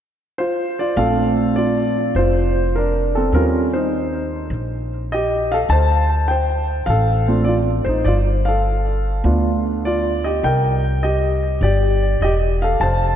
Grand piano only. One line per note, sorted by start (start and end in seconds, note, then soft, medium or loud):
0.38 0.76 F4 medium
0.38 0.75 C5 medium
0.79 0.97 F4 soft
0.79 0.98 D5 medium
0.97 2.63 A3 soft
0.97 2.63 C4 soft
0.97 2.63 D4 soft
0.97 1.56 F4 medium
0.97 1.53 A4 medium
0.97 1.58 F5 medium
1.56 2.12 F4 soft
1.56 2.11 D5 medium
2.16 2.72 F4 medium
2.16 2.77 C5 medium
2.76 3.13 D4 soft
2.76 3.16 A#4 medium
3.15 3.33 C4 soft
3.15 3.33 A4 medium
3.34 3.69 G3 soft
3.34 3.70 C4 soft
3.34 3.70 C#4 soft
3.34 3.70 F4 medium
3.34 3.43 A#4 medium
3.73 4.49 D#4 soft
3.73 4.48 C5 medium
5.12 5.50 G4 medium
5.12 5.52 D#5 medium
5.52 5.59 A4 medium
5.52 5.57 F5 medium
5.70 6.26 C5 medium
5.70 6.25 A5 medium
6.28 6.85 C5 medium
6.28 6.89 G5 medium
6.86 7.44 A4 medium
6.86 7.42 F5 medium
7.28 7.45 A3 soft
7.28 7.45 C4 soft
7.28 7.46 D4 soft
7.28 7.46 F4 soft
7.44 7.54 D5 medium
7.49 7.57 F4 soft
7.85 8.06 D#4 soft
7.85 8.06 C5 medium
8.05 8.17 F4 medium
8.05 8.14 D5 medium
8.45 9.22 A4 medium
8.45 9.20 F5 medium
9.24 10.15 A3 soft
9.24 10.16 B3 soft
9.24 10.16 D4 soft
9.24 9.85 F4 soft
9.85 10.22 F4 soft
9.85 10.26 D5 medium
10.24 10.43 G4 soft
10.24 10.44 D#5 medium
10.44 11.00 A#4 medium
10.44 11.05 G5 medium
11.03 11.59 G4 medium
11.03 11.58 D#5 medium
11.63 12.18 G4 medium
11.63 12.23 D5 medium
12.22 12.33 G4 medium
12.22 12.31 D#5 medium
12.62 12.81 A4 medium
12.62 12.81 F5 medium
12.81 13.16 C5 medium
12.81 13.16 A5 medium